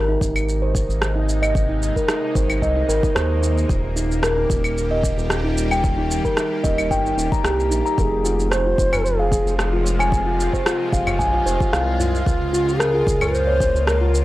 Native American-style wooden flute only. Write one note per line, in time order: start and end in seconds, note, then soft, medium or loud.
7.98 8.03 A#4 medium
8.02 8.52 G#4 medium
8.50 8.56 C#5 medium
8.55 9.05 C5 loud
9.04 9.57 G#4 medium
9.58 9.96 G#4 medium
12.00 12.81 F4 medium
12.80 13.34 G#4 loud
13.33 13.86 C5 loud
13.87 14.25 A#4 medium